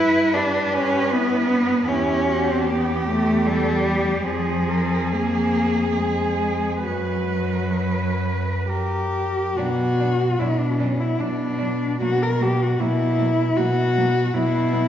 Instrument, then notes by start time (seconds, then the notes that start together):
cello
Already playing: G2 E4 B4
0.34 D4 G4
0.73 C#4
1.12 B3 E4
1.51 D4
1.87 E2 C#4 E4 G4
2.28 F#4
2.66 B3 G4
3.07 A3
3.47 G3 A4
3.86 G4
4.25 F2 F3 G#4
4.69 A#4
5.13 A#3 G#4
5.91 A#3
5.98 G#3
6.85 F#2 F#3 F#4 B4
7.74 B4
8.69 G4 A#4
9.57 B2 F#3 D4 F#4
9.99 F#3 D4
10.39 B2 F#3 D4 E4
10.59 D4
10.79 F#3 C#4 D4
11.00 E4
11.20 B2 F#3 D4
11.59 F#3 D4
12.01 B2 F#3 A#3 F#4
12.22 A#4
12.39 F#3 A#3 G4
12.62 F#4
12.80 B2 F#3 A#3 E4
13.18 F#3 A#3
13.56 B2 F#3 A#3 F#4
13.97 F#3 A#3
14.34 B2 F#3 B3 E4
14.72 F#3 B3